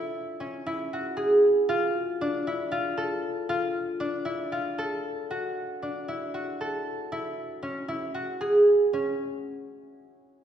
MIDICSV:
0, 0, Header, 1, 2, 480
1, 0, Start_track
1, 0, Tempo, 511509
1, 1572, Time_signature, 7, 3, 24, 8
1, 3014, Tempo, 518583
1, 9705, End_track
2, 0, Start_track
2, 0, Title_t, "Harp"
2, 0, Program_c, 0, 46
2, 0, Note_on_c, 0, 62, 72
2, 0, Note_on_c, 0, 64, 89
2, 0, Note_on_c, 0, 69, 83
2, 376, Note_on_c, 0, 61, 73
2, 432, Note_off_c, 0, 62, 0
2, 620, Note_off_c, 0, 64, 0
2, 624, Note_on_c, 0, 64, 81
2, 874, Note_on_c, 0, 66, 74
2, 1095, Note_on_c, 0, 68, 83
2, 1152, Note_off_c, 0, 69, 0
2, 1584, Note_on_c, 0, 65, 92
2, 1640, Note_off_c, 0, 64, 0
2, 1640, Note_off_c, 0, 66, 0
2, 2076, Note_on_c, 0, 62, 81
2, 2132, Note_off_c, 0, 61, 0
2, 2319, Note_on_c, 0, 64, 87
2, 2375, Note_off_c, 0, 65, 0
2, 2548, Note_on_c, 0, 65, 85
2, 2605, Note_off_c, 0, 64, 0
2, 2791, Note_on_c, 0, 69, 88
2, 2847, Note_off_c, 0, 68, 0
2, 3269, Note_off_c, 0, 65, 0
2, 3273, Note_on_c, 0, 65, 96
2, 3740, Note_off_c, 0, 62, 0
2, 3743, Note_on_c, 0, 62, 76
2, 3976, Note_on_c, 0, 64, 83
2, 4031, Note_off_c, 0, 65, 0
2, 4225, Note_on_c, 0, 65, 83
2, 4281, Note_off_c, 0, 64, 0
2, 4465, Note_off_c, 0, 69, 0
2, 4469, Note_on_c, 0, 69, 86
2, 4951, Note_on_c, 0, 66, 76
2, 5007, Note_off_c, 0, 65, 0
2, 5428, Note_off_c, 0, 62, 0
2, 5432, Note_on_c, 0, 62, 64
2, 5672, Note_on_c, 0, 64, 70
2, 5907, Note_off_c, 0, 66, 0
2, 5910, Note_on_c, 0, 66, 69
2, 6152, Note_off_c, 0, 69, 0
2, 6156, Note_on_c, 0, 69, 76
2, 6627, Note_off_c, 0, 64, 0
2, 6631, Note_on_c, 0, 64, 88
2, 7006, Note_off_c, 0, 64, 0
2, 7099, Note_on_c, 0, 61, 74
2, 7155, Note_off_c, 0, 62, 0
2, 7288, Note_off_c, 0, 61, 0
2, 7339, Note_on_c, 0, 64, 86
2, 7528, Note_off_c, 0, 64, 0
2, 7576, Note_off_c, 0, 66, 0
2, 7579, Note_on_c, 0, 66, 74
2, 7770, Note_off_c, 0, 66, 0
2, 7823, Note_on_c, 0, 68, 83
2, 7878, Note_off_c, 0, 69, 0
2, 8205, Note_off_c, 0, 68, 0
2, 8309, Note_on_c, 0, 61, 78
2, 8527, Note_off_c, 0, 61, 0
2, 9705, End_track
0, 0, End_of_file